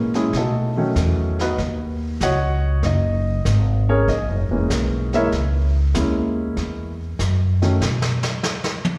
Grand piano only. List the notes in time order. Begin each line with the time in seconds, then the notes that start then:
Already playing: E3 G#3 A#3 C#4 E4 F#4 A#4
0.15 G#3 C#4 E4 G#4
0.37 A3 D#4 F#4 A4
0.77 D#3 F#3 A3 C#4
1.41 B3 D#4 F#4 B4
2.23 F#4 C#5 D#5 F#5
2.85 D#4 D#5
3.89 C#4 G#4 A#4 C#5
4.09 D#4 D#5
4.51 E3 G#3 A#3 C#4
5.14 E3 G#3 A#3 D#4 E4 A#4 C#5 E5
5.95 G#3 A#3 C#4 E4
7.62 D#3 F#3 A3 C#4